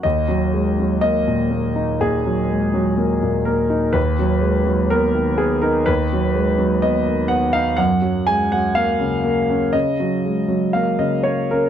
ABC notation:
X:1
M:4/4
L:1/16
Q:1/4=62
K:D#m
V:1 name="Grand piano"
d4 d4 G6 A2 | B4 A2 G A B4 d2 f e | f2 g f e4 d4 e d c A |]
V:2 name="Grand piano" clef=bass
D,, F, G, F, A, A,, A, D A,, F, G, F, A, A,, A, D | D,, F, G, F, B, D, B, D D,, F, G, F, B, D, B, D | F,, F, G, F, A, C, A, C C, F, G, F, A, C, A, C |]